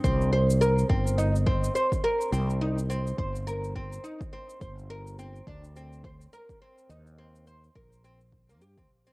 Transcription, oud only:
X:1
M:4/4
L:1/16
Q:"Swing 16ths" 1/4=105
K:Cm
V:1 name="Oud"
C2 c z B2 C2 E z C2 c z B2 | C2 E z C2 c z B2 C2 E z C2 | c z B2 C2 D z C2 c z B2 C2 | E z C2 c z B2 C z2 B, G C z C |]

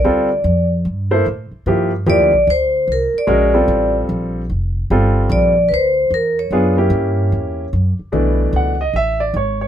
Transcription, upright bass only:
X:1
M:4/4
L:1/8
Q:"Swing" 1/4=148
K:Gdor
V:1 name="Upright bass" clef=bass
D,,2 F,,2 G,,2 A,, z | G,,2 (3E,, D,, B,,, D,,2 C,, z | B,,,2 A,,,2 B,,,2 F,,,2 | G,,,2 B,,,2 D,,2 E,,2 |
^F,,2 G,,2 E,,2 F,, z | [K:Bdor] B,,,2 C,,2 A,,,2 G,,,2 |]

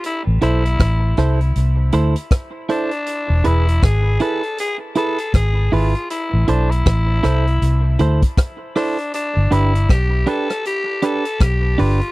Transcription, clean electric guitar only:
X:1
M:4/4
L:1/16
Q:"Swing 16ths" 1/4=79
K:Am
V:1 name="Clean electric guitar"
z2 [EAc] z3 [EAc] z3 [EAc] z3 [EAc] z | z2 [E^GB] z3 [EGB] z3 [EGB] z3 [EGB] z | z2 [EAc] z3 [EAc] z3 [EAc] z3 [EAc] z | z2 [DGB] z3 [DGB] z3 [DGB] z3 [DGB] z |]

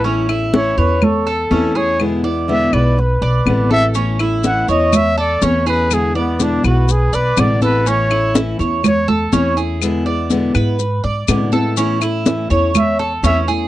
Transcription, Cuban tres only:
X:1
M:4/4
L:1/8
Q:1/4=123
K:A
V:1 name="Cuban tres"
C E2 c2 A C G- | G d2 B2 d2 A | C E2 c2 A C G- | G d2 B2 d2 A |
C E2 c2 A C G- | G d2 B2 d2 A | C E2 c2 A C G |]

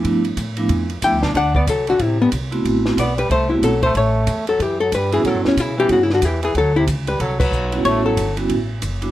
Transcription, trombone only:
X:1
M:4/4
L:1/8
Q:"Swing" 1/4=184
K:Ador
V:1 name="Trombone" clef=bass
z6 E D | D B, F, D, C, G,, z2 | z2 B, G, A, C, F, A, | A,3 F, E, F, G, E, |
F, A,, ^C, E, (3C, C, D, E, E, | F, C, z G, F, F,3 | A, F,2 z4 z |]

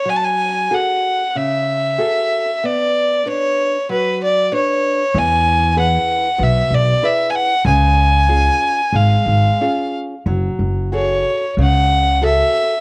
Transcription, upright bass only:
X:1
M:4/4
L:1/8
Q:1/4=94
K:F#m
V:1 name="Upright bass" clef=bass
z8 | z8 | E,,4 B,,, B,,, z2 | C,,4 G,,, G,,, z2 |
F,,, F,,,3 C,,4 |]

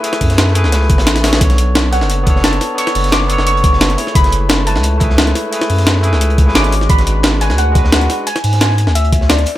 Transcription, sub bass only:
X:1
M:4/4
L:1/16
Q:1/4=175
K:F#m
V:1 name="Sub bass" clef=bass
z2 F,,4- F,, C,,3 F,,, A,,,4- A,,, | B,,,6- B,,, F,,,6- F,,, z2 | z2 F,,,4- F,,, F,,,6- F,,, z2 | F,,,6- F,,, C,,6- C,, z2 |
z2 F,,4- F,, C,,4- C,, G,,,4 | G,,,6- G,,, D,,6- D,, z2 | z2 G,,4- G,, D,,6- D,, z2 |]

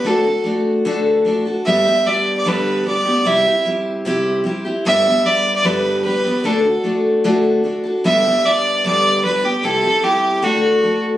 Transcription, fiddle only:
X:1
M:4/4
L:1/16
Q:1/4=150
K:G
V:1 name="Fiddle"
A4 z12 | e4 d3 d B4 d4 | e4 z12 | e4 d3 d B4 B4 |
A4 z12 | e4 d4 d4 B2 G2 | A4 G4 F6 z2 |]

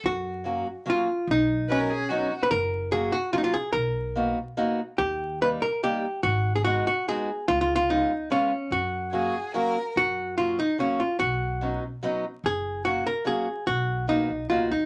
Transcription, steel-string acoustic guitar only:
X:1
M:3/4
L:1/8
Q:1/4=146
K:F#
V:1 name="Steel-string acoustic guitar"
z2 [F,A,CF] z [F,A,CF] z | z2 [F,B,CD] z [F,B,CD] z | z2 [F,A,CF] z [F,A,CF] z | z2 [A,B,DF] z [A,B,DF] z |
z2 [=G,A,D=G] z [G,A,DG] z | z2 [G,B,DF] z [G,B,DF] z | z2 [G,B,CE] z [G,B,CE] z | z2 [F,A,CF] z [F,A,CF] z |
z2 [F,A,CF] z [F,A,CF] z | z2 [F,B,CD] z [F,B,CD] z | z2 [F,A,CF] z [F,A,CF] z | z2 [A,B,DF] z [A,B,DF] z |]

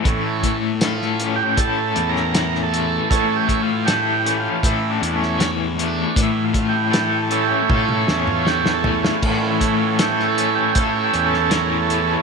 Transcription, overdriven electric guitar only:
X:1
M:4/4
L:1/8
Q:1/4=78
K:A
V:1 name="Overdriven electric guitar"
[A,,E,A,CA] A, A C A C E, A, | A,, A, A C A C E, A, | A,, A, A C A C E, A, | A,, A, A C A C E, A, |]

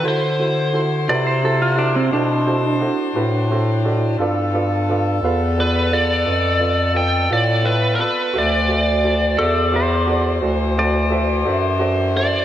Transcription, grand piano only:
X:1
M:12/8
L:1/8
Q:3/8=58
K:Dmix
V:1 name="Grand piano"
[EFAc] [EFAc] [EFAc] [EFAB] [EFAc] [EFAd] [EFAc] [EFAc] [EFAc] [EFAB] [EFAc] [EFAd] | [=FABd] [FABd] [FABd] [FAB=f] [FABd] [FABd] [FABd] [FABd] [FABd] [FABf] [FABe] [FABd] | [FAce] [FAce] [FAce] [FAce] [FAce] [FAcd] [FAcd] [FAcd] [FAce] [FAce] [FAcd] [FAce] |]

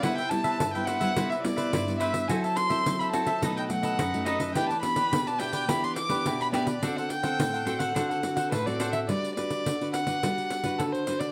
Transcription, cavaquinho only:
X:1
M:4/4
L:1/16
Q:1/4=106
K:G
V:1 name="Cavaquinho"
[EBce] [Bce] z [Bce]2 [Bce] [EBce] [Bce] [EBce] [Bce] z [Bce] [EBce]2 [EBce] [Bce] | [FAce] [Ace] z [Ace]2 [Ace] [FAce] [Ace] [^DAB^d] [ABd] z [ABd] [DABd]2 [DABd] [ABd] | [EGBd] [GBd] z [GBd]2 [GBd] [EGBd] [GBd] [EGBd] [GBd] z [GBd] [EGBd]2 [EGBd] [GBd] | [DAcf] [Acf] z [Acf]2 [Acf] [DAcf] [Acf] [DAcf] [Acf] z [Acf] [DAcf]2 [DAcf] [Acf] |
z16 |]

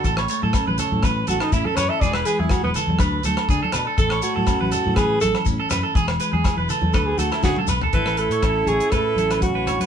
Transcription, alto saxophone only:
X:1
M:4/4
L:1/16
Q:1/4=122
K:A
V:1 name="Alto saxophone"
F z8 z F ^D E A c e | d B G E F B, z8 z2 | A2 F6 G2 A2 z4 | z8 A G F E F2 z2 |
B2 A4 G2 A4 F4 |]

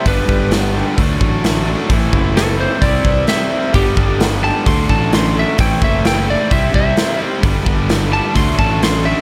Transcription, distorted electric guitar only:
X:1
M:4/4
L:1/8
Q:1/4=130
K:G
V:1 name="Distorted electric guitar" clef=bass
[G,,D,G,B,D]4 [D,F,A,D]4 | [A,,E,A,CE]4 [C,G,CE]4 | [G,,D,G,B,D]4 [D,F,A,D]4 | [A,,E,A,CE]4 [C,G,CE]4 |
[G,,D,G,B,D]4 [D,F,A,D]4 |]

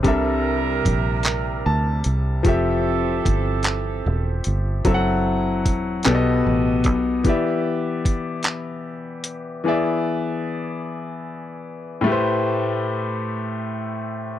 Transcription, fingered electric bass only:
X:1
M:6/8
L:1/8
Q:3/8=50
K:Am
V:1 name="Fingered electric bass" clef=bass
C,,2 _B,,,2 D,, C,, | F,,,2 G,,,2 E,,, G,,, | ^F,,,2 E,,, B,,, A,,, B,,, | z6 |
z6 | z6 |]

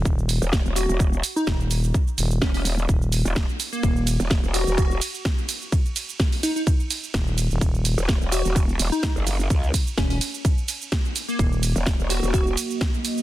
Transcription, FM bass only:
X:1
M:4/4
L:1/16
Q:"Swing 16ths" 1/4=127
K:Ebm
V:1 name="FM bass" clef=bass
E,,,3 z8 z E,,,4 | z2 E,,,2 z4 E,,,3 z4 z | E,,,3 z12 z | z12 E,,,3 E,,, |
E,,,3 z12 z | z4 E,,,2 z8 z2 | E,,,3 z12 z |]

